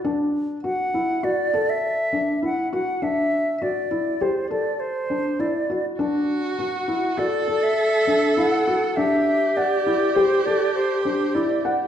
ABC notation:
X:1
M:5/4
L:1/16
Q:1/4=101
K:Dmix
V:1 name="Flute"
z4 f4 d3 e4- e f2 f2 | e4 d4 c2 d2 c4 d3 z | z4 f4 d3 e4- e f4 | e4 d4 c2 d2 c2 c2 d3 z |]
V:2 name="Viola"
z16 z4 | z16 z4 | F8 A12 | G16- G4 |]
V:3 name="Felt piano"
D4 F2 E2 F2 A4 D2 E2 F2 | D4 F2 E2 G2 A4 D2 E2 F2 | D4 F2 E2 F2 A4 D2 E2 F2 | D4 f2 E2 G2 A4 D2 E2 f2 |]